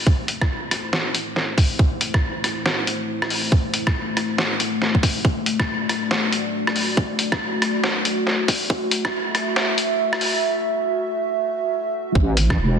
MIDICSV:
0, 0, Header, 1, 4, 480
1, 0, Start_track
1, 0, Tempo, 431655
1, 76, Time_signature, 4, 2, 24, 8
1, 14227, End_track
2, 0, Start_track
2, 0, Title_t, "Analog synth pad"
2, 0, Program_c, 0, 89
2, 0, Note_on_c, 0, 57, 78
2, 0, Note_on_c, 0, 64, 71
2, 0, Note_on_c, 0, 72, 86
2, 5790, Note_off_c, 0, 64, 0
2, 5791, Note_off_c, 0, 72, 0
2, 5834, Note_on_c, 0, 66, 73
2, 5835, Note_on_c, 0, 74, 91
2, 9637, Note_off_c, 0, 74, 0
2, 9671, Note_on_c, 0, 76, 88
2, 13470, Note_off_c, 0, 66, 0
2, 13471, Note_off_c, 0, 57, 0
2, 13475, Note_off_c, 0, 76, 0
2, 13510, Note_on_c, 0, 57, 80
2, 13511, Note_on_c, 0, 72, 91
2, 13512, Note_on_c, 0, 64, 74
2, 14227, Note_off_c, 0, 57, 0
2, 14227, Note_off_c, 0, 64, 0
2, 14227, Note_off_c, 0, 72, 0
2, 14227, End_track
3, 0, Start_track
3, 0, Title_t, "Wobble bass"
3, 0, Program_c, 1, 39
3, 13514, Note_on_c, 1, 33, 99
3, 13980, Note_off_c, 1, 33, 0
3, 13995, Note_on_c, 1, 28, 93
3, 14227, Note_off_c, 1, 28, 0
3, 14227, End_track
4, 0, Start_track
4, 0, Title_t, "Drums"
4, 73, Note_on_c, 9, 36, 117
4, 184, Note_off_c, 9, 36, 0
4, 314, Note_on_c, 9, 42, 75
4, 425, Note_off_c, 9, 42, 0
4, 461, Note_on_c, 9, 36, 107
4, 461, Note_on_c, 9, 37, 73
4, 572, Note_off_c, 9, 36, 0
4, 572, Note_off_c, 9, 37, 0
4, 793, Note_on_c, 9, 37, 50
4, 793, Note_on_c, 9, 42, 82
4, 904, Note_off_c, 9, 37, 0
4, 904, Note_off_c, 9, 42, 0
4, 1033, Note_on_c, 9, 38, 111
4, 1144, Note_off_c, 9, 38, 0
4, 1274, Note_on_c, 9, 42, 84
4, 1385, Note_off_c, 9, 42, 0
4, 1514, Note_on_c, 9, 38, 58
4, 1626, Note_off_c, 9, 38, 0
4, 1753, Note_on_c, 9, 36, 101
4, 1755, Note_on_c, 9, 46, 88
4, 1864, Note_off_c, 9, 36, 0
4, 1866, Note_off_c, 9, 46, 0
4, 1993, Note_on_c, 9, 36, 123
4, 2104, Note_off_c, 9, 36, 0
4, 2234, Note_on_c, 9, 42, 77
4, 2345, Note_off_c, 9, 42, 0
4, 2381, Note_on_c, 9, 36, 106
4, 2382, Note_on_c, 9, 37, 70
4, 2492, Note_off_c, 9, 36, 0
4, 2493, Note_off_c, 9, 37, 0
4, 2714, Note_on_c, 9, 37, 49
4, 2714, Note_on_c, 9, 42, 80
4, 2825, Note_off_c, 9, 37, 0
4, 2825, Note_off_c, 9, 42, 0
4, 2954, Note_on_c, 9, 38, 118
4, 3065, Note_off_c, 9, 38, 0
4, 3195, Note_on_c, 9, 42, 81
4, 3306, Note_off_c, 9, 42, 0
4, 3582, Note_on_c, 9, 37, 73
4, 3674, Note_on_c, 9, 46, 89
4, 3693, Note_off_c, 9, 37, 0
4, 3785, Note_off_c, 9, 46, 0
4, 3913, Note_on_c, 9, 36, 117
4, 4025, Note_off_c, 9, 36, 0
4, 4154, Note_on_c, 9, 42, 76
4, 4266, Note_off_c, 9, 42, 0
4, 4301, Note_on_c, 9, 36, 103
4, 4302, Note_on_c, 9, 37, 73
4, 4412, Note_off_c, 9, 36, 0
4, 4413, Note_off_c, 9, 37, 0
4, 4635, Note_on_c, 9, 37, 48
4, 4635, Note_on_c, 9, 42, 77
4, 4746, Note_off_c, 9, 37, 0
4, 4746, Note_off_c, 9, 42, 0
4, 4875, Note_on_c, 9, 38, 116
4, 4986, Note_off_c, 9, 38, 0
4, 5115, Note_on_c, 9, 42, 79
4, 5226, Note_off_c, 9, 42, 0
4, 5356, Note_on_c, 9, 38, 61
4, 5467, Note_off_c, 9, 38, 0
4, 5501, Note_on_c, 9, 36, 58
4, 5594, Note_off_c, 9, 36, 0
4, 5594, Note_on_c, 9, 36, 102
4, 5596, Note_on_c, 9, 46, 84
4, 5705, Note_off_c, 9, 36, 0
4, 5707, Note_off_c, 9, 46, 0
4, 5834, Note_on_c, 9, 36, 121
4, 5945, Note_off_c, 9, 36, 0
4, 6075, Note_on_c, 9, 42, 75
4, 6186, Note_off_c, 9, 42, 0
4, 6222, Note_on_c, 9, 36, 104
4, 6222, Note_on_c, 9, 37, 74
4, 6333, Note_off_c, 9, 36, 0
4, 6333, Note_off_c, 9, 37, 0
4, 6554, Note_on_c, 9, 37, 53
4, 6554, Note_on_c, 9, 42, 77
4, 6665, Note_off_c, 9, 37, 0
4, 6665, Note_off_c, 9, 42, 0
4, 6794, Note_on_c, 9, 38, 116
4, 6905, Note_off_c, 9, 38, 0
4, 7033, Note_on_c, 9, 42, 77
4, 7144, Note_off_c, 9, 42, 0
4, 7421, Note_on_c, 9, 37, 77
4, 7514, Note_on_c, 9, 46, 86
4, 7532, Note_off_c, 9, 37, 0
4, 7625, Note_off_c, 9, 46, 0
4, 7753, Note_on_c, 9, 36, 118
4, 7864, Note_off_c, 9, 36, 0
4, 7993, Note_on_c, 9, 42, 74
4, 8105, Note_off_c, 9, 42, 0
4, 8141, Note_on_c, 9, 36, 103
4, 8141, Note_on_c, 9, 37, 78
4, 8252, Note_off_c, 9, 36, 0
4, 8252, Note_off_c, 9, 37, 0
4, 8473, Note_on_c, 9, 37, 53
4, 8473, Note_on_c, 9, 42, 77
4, 8584, Note_off_c, 9, 37, 0
4, 8584, Note_off_c, 9, 42, 0
4, 8713, Note_on_c, 9, 38, 106
4, 8824, Note_off_c, 9, 38, 0
4, 8953, Note_on_c, 9, 42, 75
4, 9065, Note_off_c, 9, 42, 0
4, 9193, Note_on_c, 9, 38, 58
4, 9304, Note_off_c, 9, 38, 0
4, 9433, Note_on_c, 9, 36, 101
4, 9433, Note_on_c, 9, 46, 93
4, 9544, Note_off_c, 9, 36, 0
4, 9545, Note_off_c, 9, 46, 0
4, 9673, Note_on_c, 9, 36, 116
4, 9785, Note_off_c, 9, 36, 0
4, 9913, Note_on_c, 9, 42, 77
4, 10024, Note_off_c, 9, 42, 0
4, 10061, Note_on_c, 9, 36, 100
4, 10061, Note_on_c, 9, 37, 83
4, 10172, Note_off_c, 9, 36, 0
4, 10172, Note_off_c, 9, 37, 0
4, 10394, Note_on_c, 9, 37, 57
4, 10394, Note_on_c, 9, 42, 79
4, 10505, Note_off_c, 9, 37, 0
4, 10505, Note_off_c, 9, 42, 0
4, 10634, Note_on_c, 9, 38, 110
4, 10745, Note_off_c, 9, 38, 0
4, 10873, Note_on_c, 9, 42, 80
4, 10985, Note_off_c, 9, 42, 0
4, 11261, Note_on_c, 9, 37, 83
4, 11354, Note_on_c, 9, 46, 91
4, 11373, Note_off_c, 9, 37, 0
4, 11465, Note_off_c, 9, 46, 0
4, 13514, Note_on_c, 9, 36, 120
4, 13625, Note_off_c, 9, 36, 0
4, 13755, Note_on_c, 9, 42, 85
4, 13866, Note_off_c, 9, 42, 0
4, 13902, Note_on_c, 9, 36, 107
4, 13903, Note_on_c, 9, 37, 74
4, 14013, Note_off_c, 9, 36, 0
4, 14014, Note_off_c, 9, 37, 0
4, 14227, End_track
0, 0, End_of_file